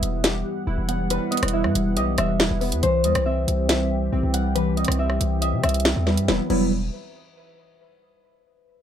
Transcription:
Already playing: E3 G3 B3 E4 B4 E5 F#5
0.02 E1, closed hi-hat
0.24 G4, snare, closed hi-hat
0.67 D#1 E4
0.78 E1
0.89 B3 F#5, closed hi-hat
1.10 G3 B4, closed hi-hat
1.31 B3 D#5, closed hi-hat
1.37 closed hi-hat
1.43 E1, cross-stick, closed hi-hat
1.48 closed hi-hat
1.53 E4 E5
1.64 G2, cross-stick
1.75 E1, closed hi-hat
1.97 B1 G4 D#5, closed hi-hat
2.18 E1 E5, cross-stick, closed hi-hat
2.40 E4, snare
2.51 E1
2.61 B3 B4, open hi-hat
2.72 E2, closed hi-hat
2.83 C2 E3 C4 G4 C5, closed hi-hat
3.04 E2 G3 D#5, closed hi-hat
3.15 C2, cross-stick, closed hi-hat
3.26 C4 E5
3.48 C2, closed hi-hat
3.69 E5, snare, closed hi-hat
4.12 B1 C4
4.23 C2
4.34 G3 F#5, closed hi-hat
4.55 E3 B4, closed hi-hat
4.77 G3 D#5, closed hi-hat
4.85 C2, cross-stick, closed hi-hat
4.92 closed hi-hat
4.99 C4 E5
5.10 cross-stick
5.20 C2, closed hi-hat
5.41 D#5 E5, closed hi-hat
5.53 C3
5.64 C2 E5, cross-stick, closed hi-hat
5.69 closed hi-hat
5.74 closed hi-hat
5.80 closed hi-hat
5.85 C4, snare
5.96 E2
6.07 G3 B4, snare
6.17 G2, closed hi-hat
6.28 E1 F#3 G3 B3 E4 B4, snare
6.50 E1 F#3 G3 B3 E4 B4, crash

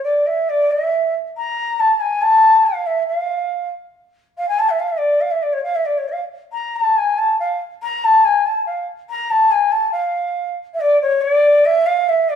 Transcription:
0.03 D5
0.26 E5
0.49 D5
0.71 E5
1.37 A#5
1.79 A5
2.00 G#5
2.22 A5
2.65 F5
2.86 E5
3.07 F5
4.37 F5
4.48 G#5
4.59 A5
4.69 E5
4.79 F5
4.88 E5
4.97 D5
5.21 F5
5.31 E5
5.42 D5
5.52 C#5
5.63 F5
5.75 E5
5.85 D5
5.97 C#5
6.08 F5
6.52 A#5
6.76 A5
6.97 G#5
7.18 A5
7.39 F5
7.82 A#5
8.04 A5
8.24 G#5
8.46 A5
8.66 F5
9.09 A#5
9.30 A5
9.51 G#5
9.71 A5
9.92 F5
10.74 E5
10.80 D5
11.01 C#5
11.21 D5
11.65 E5
11.86 F5
12.08 E5
12.29 D5

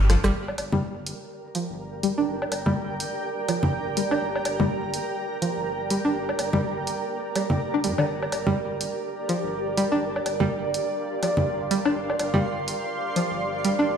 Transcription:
Already playing: G1 F6
0.10 F3, cross-stick, open hi-hat
0.24 G1 G3, cross-stick, shaker
0.34 G1 G4 A#4
0.48 low woodblock
0.52 D5
0.58 G1, open hi-hat, low woodblock
0.70 G3 G5, low conga
0.75 A#5
1.06 open hi-hat
1.55 F3, open hi-hat
1.69 G1
2.03 G3, open hi-hat
2.18 G1 D4
2.27 G1
2.42 low woodblock
2.52 G1, open hi-hat, low woodblock
2.66 G3, low conga
3.00 open hi-hat
3.48 F3, open hi-hat, low woodblock
3.63 G1, low conga
3.97 G3, open hi-hat
4.11 G1 D4, low woodblock
4.21 G1
4.36 low woodblock
4.45 G1, open hi-hat, low woodblock
4.60 G3, low conga
4.94 open hi-hat
5.42 F3, open hi-hat
5.56 G1
5.90 G3, open hi-hat
6.05 G1 D4
6.15 G1
6.29 low woodblock
6.39 G1, open hi-hat, low woodblock
6.53 G3, low conga
6.87 open hi-hat
7.36 G3, open hi-hat, low woodblock
7.50 F1, low conga
7.74 D4
7.84 G2 G3, open hi-hat
7.98 G1 D3, low woodblock
8.08 G1
8.22 low woodblock
8.32 G1, open hi-hat, low woodblock
8.47 G3, low conga
8.81 open hi-hat
9.29 F3, open hi-hat
9.43 G1
9.70 F5
9.77 G3, open hi-hat
9.92 G1 D4
10.02 G1
10.16 low woodblock
10.26 G1, open hi-hat, low woodblock
10.40 G3 C6, low conga
10.74 open hi-hat
11.23 F3, open hi-hat, low woodblock
11.37 G1, low conga
11.71 G3, open hi-hat
11.85 G1 D4, low woodblock
11.95 G1
12.10 low woodblock
12.19 G1, open hi-hat, low woodblock
12.34 G3, low conga
12.68 open hi-hat
13.16 F3, open hi-hat
13.30 G1
13.64 G3, open hi-hat
13.79 G1 D4
13.89 G1

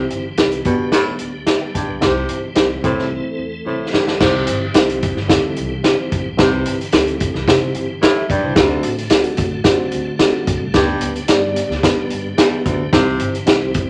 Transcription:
Already playing: E3 G3 C4 E4 G4 C5
0.10 G1, closed hi-hat
0.37 C2 C4 E4 G4 B4, snare, closed hi-hat
0.51 closed hi-hat
0.65 G1 B2 D3 B3 D4 G4 B4, kick, closed hi-hat
0.92 A2, snare, closed hi-hat
1.06 muted upright bass stroke
1.19 D2, closed hi-hat
1.47 G4 E5, snare, closed hi-hat
1.61 B4 G5
1.75 B1 G2 A5, kick, closed hi-hat
1.89 B1 B4 G5
2.01 C2 C3 E3 G3 C4 E4 G4 C5, kick, snare, closed hi-hat
2.29 G1, closed hi-hat
2.55 C2 C4 E4 G4 C5, snare, closed hi-hat
2.84 C2 A2 A3 C4 E4 A4 C5, kick, closed hi-hat
2.99 snare
3.25 muted upright bass stroke
3.39 E2
3.66 C2 A2 C4 E4 A4 C5
3.93 B1 G2, snare
4.07 snare
4.20 C2 C3 E3 G3 C4 E4 G4 C5, kick, snare, crash
4.47 G1, closed hi-hat
4.74 C2 C4 E4 G4 C5, snare, closed hi-hat
4.89 closed hi-hat
5.02 kick, closed hi-hat
5.17 G1, snare
5.28 D2 C4 E4 G4 A4, kick, snare, closed hi-hat
5.56 C2, closed hi-hat
5.83 C4 E4 G4 C5, snare, closed hi-hat
6.12 B1, kick, closed hi-hat
6.25 B1
6.37 C2 C3 C4 E4 G4 B4, kick, snare, closed hi-hat
6.66 G1, closed hi-hat
6.81 closed hi-hat
6.92 D2 C4 E4 G4 A4, snare, closed hi-hat
7.07 closed hi-hat
7.20 kick, closed hi-hat
7.34 C2, snare
7.47 C3 C4 E4 G4 C5, kick, snare, closed hi-hat
7.74 G1, closed hi-hat
8.02 A2 B4 G5, snare, closed hi-hat
8.18 G4 E5
8.29 B1 G2 D5, kick, closed hi-hat
8.43 C2 E4 C5
8.56 D2 A3 C4 D4 F#4 A4, kick, snare, closed hi-hat
8.60 D3 F#4
8.83 A1, closed hi-hat
8.98 closed hi-hat
9.10 D2 C4 D4 E4 A4, snare, closed hi-hat
9.19 F#4
9.24 closed hi-hat
9.37 A1, kick, closed hi-hat
9.64 C4 D4 F4 C5, kick, snare, closed hi-hat
9.72 F#4
9.79 muted upright bass stroke
9.91 D2, closed hi-hat
10.19 C4 D4 F#4 A4, snare, closed hi-hat
10.47 B1, kick, closed hi-hat
10.59 C2
10.74 D2 G2 D3 G3 B3 D4 G4 B4, kick, snare, closed hi-hat
11.01 D2, closed hi-hat
11.16 closed hi-hat
11.28 G2 B3 D4 G4 D5, snare, closed hi-hat
11.56 closed hi-hat
11.69 D2, snare
11.83 B3 D4 G4 B4, kick, snare, closed hi-hat
11.98 muted upright bass stroke
12.10 G2, closed hi-hat
12.37 E2 B3 D4 G4 B4, snare, closed hi-hat
12.65 D2, kick, closed hi-hat
12.93 C2 C3 E3 C4 E4 G4 C5, kick, snare, closed hi-hat
13.19 G1, closed hi-hat
13.35 closed hi-hat
13.46 C2 C4 E4 G4 C5, snare, closed hi-hat
13.74 kick, closed hi-hat

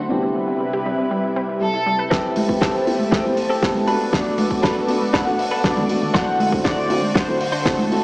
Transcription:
0.09 C3 G3 B3 D4 E4 G4 B4
0.23 C4
0.35 G3
0.48 E4
0.60 G3
0.73 G4
0.86 G3
0.98 C4
1.11 G3
1.24 E4
1.36 C4
1.49 E4
1.61 G3 A4
1.74 E4
1.86 G3
1.99 B4
2.10 A3 C4 E4 G4 A4 B4 E5 A5, kick, snare
2.36 open hi-hat, high conga
2.48 C4 E4 G4 B4, kick
2.61 C4 G4 A4 C5, kick, snare
2.86 B3 C4 E4 G4, muted clean electric guitar stroke, open hi-hat
2.99 high conga
3.11 C4 G4 A4 C5, kick, snare
3.24 B3 C4 E4 G4
3.37 muted clean electric guitar stroke, open hi-hat
3.49 C4 G4 A4
3.62 B3 C4 E4 G4 A4, kick, snare
3.75 high conga
3.87 A3 B3 D4 F#4 A4 B4 D5, open hi-hat
4.12 A3 B3 D4 F#4 D5, kick, snare
4.38 open hi-hat, high conga
4.50 A3 B3 D4 F#4, kick
4.63 D4 A4 B4, kick, snare
4.88 A3 B3 D4 F#4, muted clean electric guitar stroke, open hi-hat
5.01 high conga
5.13 D4 A4 B4 F#5, kick, snare
5.26 A3 B3 D4 F#4
5.38 muted clean electric guitar stroke, open hi-hat
5.51 D4 A4 B4
5.64 A3 B3 D4 F#4 D5, kick, snare
5.77 high conga, low conga
5.89 A3 B3 D4 F#4, open hi-hat
6.02 low conga
6.13 D3 A3 C4 D4 E4 F#4 C5 F#5, kick, snare
6.40 open hi-hat, high conga
6.52 A3 C4 E4 F#4, kick
6.64 D4 F#4 D5, kick, snare
6.89 A3 C4 E4 F#4, muted clean electric guitar stroke, open hi-hat
7.02 high conga
7.14 D4 F#4 C5, kick, snare
7.27 A3 C4 E4 F#4
7.40 muted clean electric guitar stroke, open hi-hat
7.52 D4 F#4 C5
7.65 A3 C4 E4 F#4 A4, kick, snare
7.79 high conga
7.90 A3 C4 E4 F#4, open hi-hat

